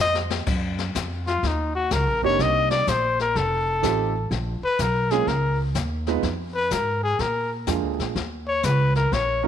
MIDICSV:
0, 0, Header, 1, 6, 480
1, 0, Start_track
1, 0, Key_signature, 6, "major"
1, 0, Tempo, 480769
1, 462, Time_signature, 4, 2, 24, 8
1, 9461, End_track
2, 0, Start_track
2, 0, Title_t, "Trumpet"
2, 0, Program_c, 0, 56
2, 12, Note_on_c, 0, 75, 97
2, 192, Note_off_c, 0, 75, 0
2, 1268, Note_on_c, 0, 65, 83
2, 1464, Note_on_c, 0, 63, 66
2, 1479, Note_off_c, 0, 65, 0
2, 1742, Note_off_c, 0, 63, 0
2, 1748, Note_on_c, 0, 66, 81
2, 1922, Note_on_c, 0, 70, 72
2, 1937, Note_off_c, 0, 66, 0
2, 2228, Note_off_c, 0, 70, 0
2, 2239, Note_on_c, 0, 73, 89
2, 2417, Note_on_c, 0, 75, 95
2, 2432, Note_off_c, 0, 73, 0
2, 2697, Note_off_c, 0, 75, 0
2, 2703, Note_on_c, 0, 74, 84
2, 2886, Note_on_c, 0, 72, 82
2, 2901, Note_off_c, 0, 74, 0
2, 3191, Note_off_c, 0, 72, 0
2, 3204, Note_on_c, 0, 70, 85
2, 3361, Note_on_c, 0, 69, 74
2, 3376, Note_off_c, 0, 70, 0
2, 4314, Note_off_c, 0, 69, 0
2, 4636, Note_on_c, 0, 71, 86
2, 4807, Note_on_c, 0, 70, 76
2, 4822, Note_off_c, 0, 71, 0
2, 5104, Note_on_c, 0, 68, 79
2, 5119, Note_off_c, 0, 70, 0
2, 5269, Note_on_c, 0, 70, 69
2, 5284, Note_off_c, 0, 68, 0
2, 5583, Note_off_c, 0, 70, 0
2, 6541, Note_on_c, 0, 71, 84
2, 6716, Note_on_c, 0, 70, 72
2, 6731, Note_off_c, 0, 71, 0
2, 7019, Note_off_c, 0, 70, 0
2, 7025, Note_on_c, 0, 68, 83
2, 7192, Note_on_c, 0, 70, 71
2, 7207, Note_off_c, 0, 68, 0
2, 7504, Note_off_c, 0, 70, 0
2, 8462, Note_on_c, 0, 73, 82
2, 8631, Note_on_c, 0, 71, 76
2, 8646, Note_off_c, 0, 73, 0
2, 8942, Note_off_c, 0, 71, 0
2, 8947, Note_on_c, 0, 70, 79
2, 9115, Note_on_c, 0, 73, 78
2, 9130, Note_off_c, 0, 70, 0
2, 9424, Note_off_c, 0, 73, 0
2, 9461, End_track
3, 0, Start_track
3, 0, Title_t, "Grand piano"
3, 0, Program_c, 1, 0
3, 2225, Note_on_c, 1, 58, 67
3, 2225, Note_on_c, 1, 60, 62
3, 2227, Note_on_c, 1, 62, 67
3, 2235, Note_on_c, 1, 67, 75
3, 2236, Note_on_c, 1, 63, 66
3, 2835, Note_off_c, 1, 58, 0
3, 2835, Note_off_c, 1, 60, 0
3, 2836, Note_off_c, 1, 62, 0
3, 2840, Note_off_c, 1, 67, 0
3, 2841, Note_off_c, 1, 63, 0
3, 3818, Note_on_c, 1, 63, 55
3, 3821, Note_on_c, 1, 57, 56
3, 3821, Note_on_c, 1, 60, 55
3, 3823, Note_on_c, 1, 67, 67
3, 3830, Note_on_c, 1, 65, 57
3, 4106, Note_off_c, 1, 63, 0
3, 4107, Note_off_c, 1, 57, 0
3, 4107, Note_off_c, 1, 60, 0
3, 4108, Note_off_c, 1, 67, 0
3, 4112, Note_off_c, 1, 65, 0
3, 5107, Note_on_c, 1, 58, 70
3, 5109, Note_on_c, 1, 61, 68
3, 5111, Note_on_c, 1, 68, 75
3, 5112, Note_on_c, 1, 56, 68
3, 5113, Note_on_c, 1, 65, 69
3, 5253, Note_off_c, 1, 58, 0
3, 5254, Note_off_c, 1, 61, 0
3, 5254, Note_off_c, 1, 68, 0
3, 5255, Note_off_c, 1, 56, 0
3, 5256, Note_off_c, 1, 65, 0
3, 6067, Note_on_c, 1, 59, 66
3, 6068, Note_on_c, 1, 56, 66
3, 6071, Note_on_c, 1, 63, 71
3, 6072, Note_on_c, 1, 65, 65
3, 6079, Note_on_c, 1, 71, 80
3, 6212, Note_off_c, 1, 59, 0
3, 6213, Note_off_c, 1, 56, 0
3, 6214, Note_off_c, 1, 63, 0
3, 6215, Note_off_c, 1, 65, 0
3, 6219, Note_off_c, 1, 71, 0
3, 7663, Note_on_c, 1, 56, 50
3, 7664, Note_on_c, 1, 62, 53
3, 7665, Note_on_c, 1, 65, 52
3, 7665, Note_on_c, 1, 68, 64
3, 7667, Note_on_c, 1, 58, 51
3, 8143, Note_off_c, 1, 56, 0
3, 8144, Note_off_c, 1, 62, 0
3, 8144, Note_off_c, 1, 68, 0
3, 8145, Note_off_c, 1, 58, 0
3, 8145, Note_off_c, 1, 65, 0
3, 9417, Note_on_c, 1, 54, 82
3, 9420, Note_on_c, 1, 61, 69
3, 9421, Note_on_c, 1, 63, 76
3, 9423, Note_on_c, 1, 65, 71
3, 9429, Note_on_c, 1, 70, 94
3, 9461, Note_off_c, 1, 54, 0
3, 9461, Note_off_c, 1, 61, 0
3, 9461, Note_off_c, 1, 63, 0
3, 9461, Note_off_c, 1, 65, 0
3, 9461, Note_off_c, 1, 70, 0
3, 9461, End_track
4, 0, Start_track
4, 0, Title_t, "Upright bass"
4, 0, Program_c, 2, 32
4, 0, Note_on_c, 2, 41, 77
4, 449, Note_off_c, 2, 41, 0
4, 467, Note_on_c, 2, 42, 76
4, 931, Note_off_c, 2, 42, 0
4, 948, Note_on_c, 2, 41, 88
4, 1412, Note_off_c, 2, 41, 0
4, 1427, Note_on_c, 2, 39, 76
4, 1892, Note_off_c, 2, 39, 0
4, 1908, Note_on_c, 2, 37, 79
4, 2062, Note_off_c, 2, 37, 0
4, 2062, Note_on_c, 2, 34, 50
4, 2213, Note_off_c, 2, 34, 0
4, 2219, Note_on_c, 2, 30, 63
4, 2371, Note_off_c, 2, 30, 0
4, 2385, Note_on_c, 2, 36, 81
4, 2851, Note_off_c, 2, 36, 0
4, 2868, Note_on_c, 2, 34, 85
4, 3333, Note_off_c, 2, 34, 0
4, 3348, Note_on_c, 2, 29, 75
4, 3813, Note_off_c, 2, 29, 0
4, 3826, Note_on_c, 2, 33, 78
4, 4292, Note_off_c, 2, 33, 0
4, 4301, Note_on_c, 2, 34, 86
4, 4596, Note_off_c, 2, 34, 0
4, 4783, Note_on_c, 2, 35, 81
4, 5250, Note_off_c, 2, 35, 0
4, 5261, Note_on_c, 2, 37, 74
4, 5729, Note_off_c, 2, 37, 0
4, 5742, Note_on_c, 2, 39, 92
4, 6210, Note_off_c, 2, 39, 0
4, 6217, Note_on_c, 2, 41, 71
4, 6687, Note_off_c, 2, 41, 0
4, 6701, Note_on_c, 2, 44, 87
4, 7169, Note_off_c, 2, 44, 0
4, 7178, Note_on_c, 2, 46, 72
4, 7647, Note_off_c, 2, 46, 0
4, 7660, Note_on_c, 2, 41, 86
4, 7814, Note_off_c, 2, 41, 0
4, 7814, Note_on_c, 2, 38, 49
4, 7973, Note_off_c, 2, 38, 0
4, 7979, Note_on_c, 2, 34, 61
4, 8131, Note_off_c, 2, 34, 0
4, 8143, Note_on_c, 2, 39, 81
4, 8609, Note_off_c, 2, 39, 0
4, 8624, Note_on_c, 2, 37, 88
4, 9089, Note_off_c, 2, 37, 0
4, 9104, Note_on_c, 2, 34, 79
4, 9461, Note_off_c, 2, 34, 0
4, 9461, End_track
5, 0, Start_track
5, 0, Title_t, "Muted upright bass strokes"
5, 4610, Note_on_c, 9, 29, 40
5, 4710, Note_off_c, 9, 29, 0
5, 9461, End_track
6, 0, Start_track
6, 0, Title_t, "Drums"
6, 147, Note_on_c, 9, 38, 63
6, 247, Note_off_c, 9, 38, 0
6, 303, Note_on_c, 9, 38, 81
6, 402, Note_off_c, 9, 38, 0
6, 465, Note_on_c, 9, 25, 47
6, 465, Note_on_c, 9, 38, 43
6, 465, Note_on_c, 9, 49, 75
6, 469, Note_on_c, 9, 36, 68
6, 565, Note_off_c, 9, 38, 0
6, 565, Note_off_c, 9, 49, 0
6, 569, Note_off_c, 9, 36, 0
6, 783, Note_on_c, 9, 38, 56
6, 882, Note_off_c, 9, 38, 0
6, 947, Note_on_c, 9, 44, 57
6, 951, Note_on_c, 9, 36, 21
6, 952, Note_on_c, 9, 38, 70
6, 1047, Note_off_c, 9, 44, 0
6, 1051, Note_off_c, 9, 36, 0
6, 1052, Note_off_c, 9, 38, 0
6, 1269, Note_on_c, 9, 38, 41
6, 1369, Note_off_c, 9, 38, 0
6, 1429, Note_on_c, 9, 36, 25
6, 1430, Note_off_c, 9, 25, 0
6, 1430, Note_on_c, 9, 25, 49
6, 1430, Note_on_c, 9, 38, 44
6, 1529, Note_off_c, 9, 36, 0
6, 1530, Note_off_c, 9, 38, 0
6, 1901, Note_on_c, 9, 44, 51
6, 1906, Note_on_c, 9, 38, 67
6, 1909, Note_on_c, 9, 36, 20
6, 2001, Note_off_c, 9, 44, 0
6, 2006, Note_off_c, 9, 38, 0
6, 2008, Note_off_c, 9, 36, 0
6, 2385, Note_off_c, 9, 25, 0
6, 2385, Note_on_c, 9, 25, 53
6, 2385, Note_on_c, 9, 38, 47
6, 2387, Note_on_c, 9, 36, 22
6, 2485, Note_off_c, 9, 38, 0
6, 2487, Note_off_c, 9, 36, 0
6, 2702, Note_on_c, 9, 38, 57
6, 2801, Note_off_c, 9, 38, 0
6, 2867, Note_on_c, 9, 44, 62
6, 2868, Note_on_c, 9, 36, 24
6, 2872, Note_on_c, 9, 38, 71
6, 2967, Note_off_c, 9, 44, 0
6, 2968, Note_off_c, 9, 36, 0
6, 2972, Note_off_c, 9, 38, 0
6, 3187, Note_on_c, 9, 38, 39
6, 3287, Note_off_c, 9, 38, 0
6, 3348, Note_on_c, 9, 36, 17
6, 3350, Note_off_c, 9, 25, 0
6, 3350, Note_on_c, 9, 25, 50
6, 3350, Note_on_c, 9, 38, 41
6, 3448, Note_off_c, 9, 36, 0
6, 3449, Note_off_c, 9, 38, 0
6, 3823, Note_on_c, 9, 44, 57
6, 3826, Note_on_c, 9, 36, 24
6, 3828, Note_on_c, 9, 38, 68
6, 3923, Note_off_c, 9, 44, 0
6, 3925, Note_off_c, 9, 36, 0
6, 3928, Note_off_c, 9, 38, 0
6, 4304, Note_off_c, 9, 25, 0
6, 4304, Note_on_c, 9, 25, 49
6, 4304, Note_on_c, 9, 36, 20
6, 4304, Note_on_c, 9, 38, 44
6, 4404, Note_off_c, 9, 36, 0
6, 4404, Note_off_c, 9, 38, 0
6, 4778, Note_on_c, 9, 44, 59
6, 4782, Note_on_c, 9, 36, 24
6, 4783, Note_on_c, 9, 38, 64
6, 4878, Note_off_c, 9, 44, 0
6, 4882, Note_off_c, 9, 36, 0
6, 4883, Note_off_c, 9, 38, 0
6, 5097, Note_on_c, 9, 38, 41
6, 5197, Note_off_c, 9, 38, 0
6, 5262, Note_on_c, 9, 36, 25
6, 5265, Note_off_c, 9, 25, 0
6, 5265, Note_on_c, 9, 25, 50
6, 5265, Note_on_c, 9, 38, 46
6, 5362, Note_off_c, 9, 36, 0
6, 5365, Note_off_c, 9, 38, 0
6, 5737, Note_on_c, 9, 44, 60
6, 5741, Note_on_c, 9, 36, 21
6, 5742, Note_on_c, 9, 38, 67
6, 5837, Note_off_c, 9, 44, 0
6, 5840, Note_off_c, 9, 36, 0
6, 5842, Note_off_c, 9, 38, 0
6, 6056, Note_on_c, 9, 38, 37
6, 6156, Note_off_c, 9, 38, 0
6, 6218, Note_off_c, 9, 25, 0
6, 6218, Note_on_c, 9, 25, 56
6, 6218, Note_on_c, 9, 36, 26
6, 6218, Note_on_c, 9, 38, 44
6, 6317, Note_off_c, 9, 38, 0
6, 6318, Note_off_c, 9, 36, 0
6, 6695, Note_on_c, 9, 44, 57
6, 6699, Note_on_c, 9, 36, 17
6, 6700, Note_on_c, 9, 38, 68
6, 6795, Note_off_c, 9, 44, 0
6, 6799, Note_off_c, 9, 36, 0
6, 6800, Note_off_c, 9, 38, 0
6, 7178, Note_off_c, 9, 25, 0
6, 7178, Note_on_c, 9, 25, 50
6, 7178, Note_on_c, 9, 38, 45
6, 7180, Note_on_c, 9, 36, 21
6, 7277, Note_off_c, 9, 38, 0
6, 7280, Note_off_c, 9, 36, 0
6, 7656, Note_on_c, 9, 44, 50
6, 7661, Note_on_c, 9, 36, 22
6, 7661, Note_on_c, 9, 38, 69
6, 7756, Note_off_c, 9, 44, 0
6, 7761, Note_off_c, 9, 36, 0
6, 7761, Note_off_c, 9, 38, 0
6, 7982, Note_on_c, 9, 38, 41
6, 8082, Note_off_c, 9, 38, 0
6, 8143, Note_off_c, 9, 25, 0
6, 8143, Note_on_c, 9, 25, 45
6, 8143, Note_on_c, 9, 36, 26
6, 8143, Note_on_c, 9, 38, 44
6, 8243, Note_off_c, 9, 36, 0
6, 8243, Note_off_c, 9, 38, 0
6, 8616, Note_on_c, 9, 44, 60
6, 8621, Note_on_c, 9, 38, 71
6, 8623, Note_on_c, 9, 36, 21
6, 8716, Note_off_c, 9, 44, 0
6, 8721, Note_off_c, 9, 38, 0
6, 8723, Note_off_c, 9, 36, 0
6, 8938, Note_on_c, 9, 38, 39
6, 9038, Note_off_c, 9, 38, 0
6, 9106, Note_on_c, 9, 36, 26
6, 9110, Note_off_c, 9, 25, 0
6, 9110, Note_on_c, 9, 25, 44
6, 9110, Note_on_c, 9, 38, 45
6, 9205, Note_off_c, 9, 36, 0
6, 9209, Note_off_c, 9, 38, 0
6, 9461, Note_off_c, 9, 25, 0
6, 9461, End_track
0, 0, End_of_file